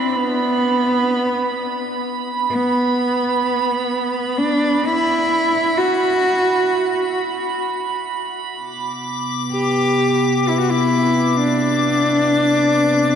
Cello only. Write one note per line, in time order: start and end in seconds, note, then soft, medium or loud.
0.00 0.18 C4 medium
0.17 2.01 B3 medium
2.50 4.39 B3 medium
4.37 4.88 D4 medium
4.86 5.79 E4 loud
5.78 7.16 F#4 loud
9.52 10.50 G4 medium
10.48 10.60 E4 medium
10.60 10.71 F#4 medium
10.70 11.38 E4 medium
11.39 13.15 D4 loud